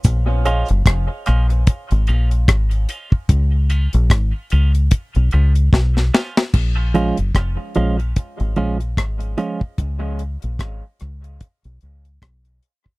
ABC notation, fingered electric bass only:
X:1
M:4/4
L:1/16
Q:"Swing 16ths" 1/4=74
K:Bbphr
V:1 name="Fingered electric bass" clef=bass
B,,,3 G,,, F,,, z B,,,2 z A,,, B,,,2 A,,,2 z2 | D,,3 B,,, A,,, z D,,2 z C,, D,,2 C,,2 z2 | B,,,3 G,,, F,,, z B,,,2 z A,,, B,,,2 A,,,2 z2 | D,,3 B,,, A,,, z D,,2 z C,, D,,2 C,,2 z2 |]